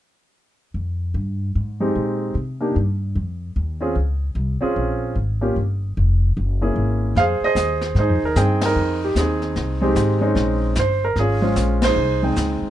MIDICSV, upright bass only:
0, 0, Header, 1, 3, 480
1, 0, Start_track
1, 0, Key_signature, -4, "minor"
1, 0, Tempo, 400534
1, 902, Time_signature, 4, 2, 24, 8
1, 15220, End_track
2, 0, Start_track
2, 0, Title_t, "Upright bass"
2, 0, Program_c, 0, 32
2, 890, Note_on_c, 0, 41, 68
2, 1362, Note_off_c, 0, 41, 0
2, 1369, Note_on_c, 0, 43, 73
2, 1842, Note_off_c, 0, 43, 0
2, 1861, Note_on_c, 0, 44, 71
2, 2329, Note_off_c, 0, 44, 0
2, 2342, Note_on_c, 0, 46, 69
2, 2806, Note_off_c, 0, 46, 0
2, 2813, Note_on_c, 0, 48, 67
2, 3285, Note_off_c, 0, 48, 0
2, 3306, Note_on_c, 0, 43, 77
2, 3772, Note_off_c, 0, 43, 0
2, 3780, Note_on_c, 0, 41, 71
2, 4250, Note_off_c, 0, 41, 0
2, 4265, Note_on_c, 0, 39, 77
2, 4732, Note_off_c, 0, 39, 0
2, 4738, Note_on_c, 0, 37, 69
2, 5207, Note_off_c, 0, 37, 0
2, 5214, Note_on_c, 0, 36, 82
2, 5508, Note_off_c, 0, 36, 0
2, 5706, Note_on_c, 0, 34, 72
2, 6170, Note_off_c, 0, 34, 0
2, 6177, Note_on_c, 0, 32, 72
2, 6649, Note_off_c, 0, 32, 0
2, 6665, Note_on_c, 0, 31, 69
2, 7133, Note_off_c, 0, 31, 0
2, 7156, Note_on_c, 0, 29, 83
2, 7618, Note_off_c, 0, 29, 0
2, 7630, Note_on_c, 0, 30, 78
2, 8090, Note_off_c, 0, 30, 0
2, 8097, Note_on_c, 0, 32, 75
2, 8565, Note_off_c, 0, 32, 0
2, 8573, Note_on_c, 0, 41, 77
2, 8868, Note_off_c, 0, 41, 0
2, 9050, Note_on_c, 0, 39, 85
2, 9517, Note_off_c, 0, 39, 0
2, 9524, Note_on_c, 0, 44, 76
2, 9695, Note_off_c, 0, 44, 0
2, 9695, Note_on_c, 0, 41, 49
2, 9853, Note_off_c, 0, 41, 0
2, 9860, Note_on_c, 0, 39, 52
2, 10007, Note_off_c, 0, 39, 0
2, 10014, Note_on_c, 0, 43, 77
2, 10486, Note_off_c, 0, 43, 0
2, 10492, Note_on_c, 0, 41, 71
2, 10961, Note_off_c, 0, 41, 0
2, 10968, Note_on_c, 0, 39, 76
2, 11443, Note_off_c, 0, 39, 0
2, 11450, Note_on_c, 0, 36, 75
2, 11918, Note_off_c, 0, 36, 0
2, 11925, Note_on_c, 0, 32, 80
2, 12398, Note_off_c, 0, 32, 0
2, 12405, Note_on_c, 0, 34, 81
2, 12880, Note_off_c, 0, 34, 0
2, 12896, Note_on_c, 0, 31, 83
2, 13365, Note_off_c, 0, 31, 0
2, 13370, Note_on_c, 0, 32, 83
2, 13842, Note_off_c, 0, 32, 0
2, 13850, Note_on_c, 0, 34, 80
2, 14322, Note_off_c, 0, 34, 0
2, 14334, Note_on_c, 0, 36, 79
2, 14804, Note_off_c, 0, 36, 0
2, 14814, Note_on_c, 0, 37, 85
2, 15105, Note_off_c, 0, 37, 0
2, 15220, End_track
3, 0, Start_track
3, 0, Title_t, "Muted upright bass strokes"
3, 5540, Note_on_c, 9, 29, 34
3, 5660, Note_off_c, 9, 29, 0
3, 8884, Note_on_c, 9, 29, 34
3, 9004, Note_off_c, 9, 29, 0
3, 15120, Note_on_c, 9, 29, 40
3, 15220, Note_off_c, 9, 29, 0
3, 15220, End_track
0, 0, End_of_file